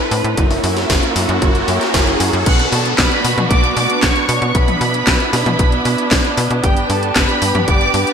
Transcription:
Already playing: C4 E4 A4 B4, riser
0.11 A2, open hi-hat
0.24 A2, closed hi-hat
0.37 F#1 A#3 C#4 E4 F#4 A#4, kick, closed hi-hat
0.51 open hi-hat, high tom
0.64 F#2, open hi-hat
0.77 snare, closed hi-hat
0.90 F#1, kick, snare, closed hi-hat
1.03 closed hi-hat
1.16 F#2 C#4 E4 F#4 A#4, open hi-hat
1.29 F#2, closed hi-hat, high tom
1.42 F#1, kick, closed hi-hat
1.55 closed hi-hat
1.68 F#2 C#4 E4 F#4 A#4, open hi-hat
1.81 snare, closed hi-hat
1.94 F#1, kick, snare, closed hi-hat
2.07 C#4 E4 F#4 A#4, closed hi-hat
2.20 F#2, open hi-hat
2.33 F#2, closed hi-hat
2.46 B1 B3 D4 F#4 B4 F#5 F#6, kick, closed hi-hat, crash, downlifter
2.59 closed hi-hat
2.72 B2 A4 A5, open hi-hat
2.85 closed hi-hat
2.98 B1 B4 B5, kick, snare, clap, closed hi-hat
3.12 closed hi-hat
3.24 B2 B3 D4 F#4 B4, open hi-hat
3.38 B2, closed hi-hat, high tom
3.51 B1 D5 D6, kick, closed hi-hat
3.64 closed hi-hat
3.77 B2 B3 D4 F#4 B4 D5 D6, open hi-hat
3.90 closed hi-hat
4.03 B1 C#5 C#6, kick, snare, clap, closed hi-hat
4.16 closed hi-hat
4.29 B2, open hi-hat
4.42 B2, closed hi-hat
4.55 B1 B3 D4 E4 F#4 B4 B5, kick, closed hi-hat
4.68 closed hi-hat, high tom
4.81 B2, open hi-hat
4.94 closed hi-hat
5.07 B1, kick, snare, clap, closed hi-hat
5.20 closed hi-hat
5.33 B2 B3 D4 F#4 B4 B5, snare, open hi-hat
5.46 B2, closed hi-hat, high tom
5.59 B1, kick, closed hi-hat
5.72 closed hi-hat
5.85 B2, open hi-hat
5.98 closed hi-hat
6.11 B1, kick, snare, clap, closed hi-hat
6.24 closed hi-hat
6.38 B2, open hi-hat
6.51 B2, closed hi-hat
6.64 G1 B3 D4 G4 B4 G5, kick, closed hi-hat
6.77 closed hi-hat
6.90 G2 A4 A5, open hi-hat
7.03 closed hi-hat
7.16 G1 B4 B5, kick, snare, clap, closed hi-hat
7.29 closed hi-hat
7.42 G2 B3 D4 G4 B4, open hi-hat
7.55 G2, closed hi-hat, high tom
7.68 G1 D5 D6, kick, closed hi-hat
7.81 closed hi-hat
7.94 G2 B3 D4 G4 B4, open hi-hat
8.07 closed hi-hat

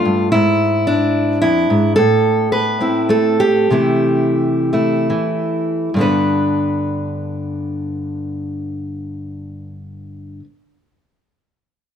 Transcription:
Already playing: A3 D4 F4
0.05 G2
0.32 G#2 E4
0.87 D4
1.42 F2 E4
1.70 G#2
1.96 A2 A4
2.52 B4
2.81 C4 E4
3.09 A3 A4
3.40 G4
3.71 C3 E3 A3 E4
4.73 A3 E4
5.10 E3
5.94 G2 D3
5.99 B3 D4 B4

